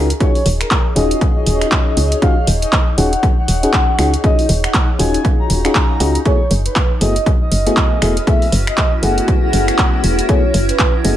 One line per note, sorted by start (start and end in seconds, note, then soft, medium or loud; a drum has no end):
0.00 0.13 C#2 medium
0.00 6.26 D#4 medium
0.00 7.41 G#4 medium
0.00 0.12 A#4 loud
0.00 7.85 C#5 medium
0.00 6.26 D#5 medium
0.10 closed hi-hat medium
0.20 0.41 C#4 medium
0.20 0.41 D#4 medium
0.20 0.41 F4 medium
0.20 0.41 F#4 medium
0.20 0.41 G#4 medium
0.20 0.45 C#5 loud
0.20 kick loud
0.20 closed hi-hat medium
0.35 open hi-hat medium
0.46 0.63 D#1 loud
0.46 open hi-hat loud
0.61 0.85 A#4 medium
0.61 finger snap medium
0.61 closed hi-hat medium
0.71 kick loud
0.71 clap loud
0.71 closed hi-hat medium
0.96 1.14 D#1 loud
0.96 2.19 C#4 medium
0.96 2.20 D#4 medium
0.96 2.20 F4 medium
0.96 2.20 F#4 medium
0.96 2.20 G#4 loud
0.96 1.21 D#5 medium
0.96 open hi-hat loud
1.11 closed hi-hat medium
1.21 kick loud
1.21 closed hi-hat soft
1.36 2.14 D#5 loud
1.47 1.64 D#1 medium
1.47 open hi-hat loud
1.61 finger snap medium
1.61 closed hi-hat medium
1.72 kick loud
1.72 clap loud
1.72 closed hi-hat medium
1.97 2.15 C#2 medium
1.97 open hi-hat loud
2.12 closed hi-hat medium
2.22 2.36 C#4 medium
2.22 2.37 D#4 medium
2.22 2.37 F4 medium
2.22 2.37 F#4 medium
2.22 2.37 G#4 medium
2.22 2.47 F5 loud
2.22 kick loud
2.22 closed hi-hat medium
2.47 2.65 D#1 loud
2.47 open hi-hat loud
2.62 2.87 D#5 loud
2.62 closed hi-hat medium
2.73 kick loud
2.73 clap loud
2.73 closed hi-hat soft
2.98 3.15 D#1 medium
2.98 3.12 C#4 medium
2.98 3.12 D#4 medium
2.98 3.12 F4 medium
2.98 3.12 F#4 medium
2.98 3.12 G#4 medium
2.98 3.23 F#5 medium
2.98 open hi-hat loud
3.13 closed hi-hat medium
3.23 kick loud
3.23 closed hi-hat soft
3.38 4.16 F#5 loud
3.48 3.66 D#1 medium
3.48 open hi-hat loud
3.63 3.96 C#4 medium
3.63 3.96 D#4 medium
3.63 3.96 F#4 medium
3.63 3.96 G#4 medium
3.63 closed hi-hat medium
3.73 kick loud
3.73 clap loud
3.73 closed hi-hat soft
3.98 4.16 C#2 medium
3.98 4.13 C#4 medium
3.98 4.13 D#4 medium
3.98 4.13 F4 medium
3.98 4.13 F#4 medium
3.98 4.13 G#4 medium
3.98 finger snap medium
3.98 open hi-hat loud
4.14 closed hi-hat medium
4.24 4.44 C#4 medium
4.24 4.44 D#4 medium
4.24 4.44 F4 medium
4.24 4.44 F#4 medium
4.24 4.45 G#4 medium
4.24 4.49 D#5 loud
4.24 kick loud
4.24 closed hi-hat soft
4.39 open hi-hat medium
4.49 4.67 D#1 loud
4.49 open hi-hat loud
4.64 4.89 F#5 loud
4.64 finger snap medium
4.64 closed hi-hat medium
4.74 kick loud
4.74 clap loud
4.74 closed hi-hat soft
4.99 5.17 D#1 loud
4.99 5.62 C#4 medium
4.99 5.62 D#4 medium
4.99 5.62 F4 medium
4.99 5.62 F#4 medium
4.99 5.62 G#4 medium
4.99 5.24 G#5 medium
4.99 open hi-hat loud
5.14 closed hi-hat medium
5.25 kick loud
5.25 closed hi-hat soft
5.40 6.17 A#5 loud
5.50 5.67 D#1 medium
5.50 open hi-hat loud
5.65 5.98 C#4 medium
5.65 5.98 D#4 medium
5.65 5.98 F4 medium
5.65 5.98 F#4 medium
5.65 5.98 G#4 medium
5.65 finger snap medium
5.65 closed hi-hat medium
5.75 kick loud
5.75 clap loud
5.75 closed hi-hat soft
6.00 6.18 C#2 medium
6.00 6.21 C#4 medium
6.00 6.21 D#4 medium
6.00 6.21 F4 medium
6.00 6.21 F#4 medium
6.00 6.21 G#4 loud
6.00 open hi-hat loud
6.15 closed hi-hat medium
6.25 6.40 A3 medium
6.25 6.40 B3 medium
6.25 11.17 C#4 medium
6.25 6.40 E4 medium
6.25 6.40 F#4 medium
6.25 6.40 G#4 medium
6.25 6.50 C#5 loud
6.25 kick loud
6.25 closed hi-hat soft
6.42 10.71 B4 medium
6.51 6.68 F#1 loud
6.51 11.17 F#4 medium
6.51 open hi-hat loud
6.66 6.90 B4 loud
6.66 closed hi-hat medium
6.76 kick loud
6.76 clap loud
6.76 closed hi-hat soft
6.92 11.17 E4 medium
7.01 7.19 F#1 loud
7.01 7.15 A3 medium
7.01 7.15 B3 medium
7.01 7.16 E4 medium
7.01 7.16 F#4 medium
7.01 7.16 G#4 medium
7.01 7.26 D#5 loud
7.01 open hi-hat loud
7.16 closed hi-hat medium
7.26 kick loud
7.26 closed hi-hat soft
7.41 8.19 D#5 loud
7.52 7.69 F#1 medium
7.52 open hi-hat loud
7.66 7.99 A3 medium
7.66 7.99 B3 medium
7.66 8.00 E4 medium
7.66 8.00 F#4 medium
7.66 8.00 G#4 medium
7.66 closed hi-hat medium
7.77 kick loud
7.77 clap loud
7.77 closed hi-hat soft
8.02 8.20 E1 medium
8.02 8.16 A3 medium
8.02 8.16 B3 medium
8.02 8.16 E4 medium
8.02 8.17 F#4 medium
8.02 8.17 G#4 medium
8.02 finger snap medium
8.02 open hi-hat loud
8.17 closed hi-hat medium
8.27 8.48 A3 medium
8.27 8.48 B3 medium
8.27 8.48 E4 medium
8.27 8.48 F#4 medium
8.27 8.48 G#4 medium
8.27 8.52 E5 loud
8.27 kick loud
8.27 closed hi-hat soft
8.42 open hi-hat medium
8.52 8.70 F#1 loud
8.52 open hi-hat loud
8.67 8.92 D#5 loud
8.67 finger snap medium
8.67 closed hi-hat medium
8.77 kick loud
8.77 clap loud
8.77 closed hi-hat medium
9.02 9.20 F#1 medium
9.02 10.26 A3 medium
9.02 10.26 B3 medium
9.02 10.26 E4 medium
9.02 10.27 F#4 medium
9.02 10.27 G#4 medium
9.02 9.28 F#5 medium
9.02 open hi-hat loud
9.18 closed hi-hat medium
9.28 kick loud
9.28 closed hi-hat soft
9.43 10.21 F#5 loud
9.53 9.71 F#1 medium
9.53 open hi-hat loud
9.68 finger snap medium
9.68 closed hi-hat medium
9.78 kick loud
9.78 clap loud
9.78 closed hi-hat medium
10.04 10.21 E1 medium
10.04 open hi-hat loud
10.19 closed hi-hat medium
10.29 10.43 A3 medium
10.29 10.43 B3 medium
10.29 10.43 E4 medium
10.29 10.43 F#4 medium
10.29 10.43 G#4 medium
10.29 10.54 C#5 loud
10.29 kick loud
10.29 closed hi-hat medium
10.54 10.72 F#1 loud
10.54 11.17 A3 medium
10.54 open hi-hat medium
10.69 10.94 B4 loud
10.69 closed hi-hat medium
10.79 kick loud
10.79 clap loud
10.79 closed hi-hat medium
11.04 11.17 F#1 medium
11.04 11.17 A3 medium
11.04 11.17 B3 medium
11.04 11.17 E4 medium
11.04 11.17 F#4 medium
11.04 11.17 G#4 medium
11.04 11.17 D#5 loud
11.04 open hi-hat loud